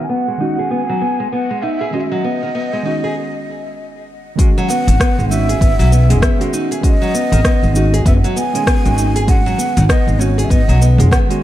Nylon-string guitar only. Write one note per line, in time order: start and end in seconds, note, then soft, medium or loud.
0.09 0.26 B3 medium
0.28 0.39 G#3 medium
0.40 0.58 D#4 medium
0.59 0.70 G#4 medium
0.71 0.81 B3 medium
0.89 1.01 F#3 medium
1.02 1.18 B3 medium
1.20 1.27 G#3 medium
1.32 1.49 B3 medium
1.51 1.62 G#3 medium
1.63 1.79 D#4 medium
1.81 1.93 G#4 medium
1.93 2.04 G#3 medium
2.12 2.23 F#3 medium
2.25 2.41 B3 medium
2.43 2.50 D#3 medium
2.55 2.71 B3 medium
2.73 2.84 G#3 medium
2.86 3.03 D#4 medium
3.04 3.15 G#4 medium
4.39 4.49 G#3 medium
4.58 4.69 F#3 loud
4.70 4.86 B3 medium
4.88 4.95 D#3 medium
5.00 5.16 B3 medium
5.19 5.29 G#3 medium
5.31 5.48 D#4 medium
5.49 5.60 G#4 medium
5.61 5.71 B3 medium
5.79 5.91 F#3 loud
5.92 6.08 B3 medium
6.10 6.17 G#3 loud
6.23 6.39 B3 medium
6.41 6.52 G#3 loud
6.53 6.69 D#4 medium
6.71 6.83 G#4 medium
6.84 6.94 G#3 medium
7.02 7.13 F#3 loud
7.14 7.30 B3 medium
7.33 7.39 D#3 medium
7.45 7.61 B3 medium
7.63 7.74 G#3 medium
7.76 7.93 D#4 medium
7.94 8.05 G#4 medium
8.06 8.16 B3 medium
8.24 8.36 F#3 loud
8.36 8.53 B3 medium
8.55 8.62 G#3 loud
8.67 8.83 B3 medium
8.85 8.96 G#3 medium
8.98 9.14 D#4 medium
9.16 9.28 G#4 medium
9.28 9.38 G#3 medium
9.46 9.58 F#3 loud
9.58 9.75 B3 medium
9.77 9.84 D#3 medium
9.89 10.06 B3 medium
10.08 10.19 G#3 medium
10.19 10.37 D#4 medium
10.38 10.49 G#4 medium
10.51 10.61 B3 medium
10.69 10.81 F#3 loud
10.81 10.98 B3 medium
10.99 11.06 G#3 loud
11.12 11.28 B3 medium
11.30 11.41 G#3 medium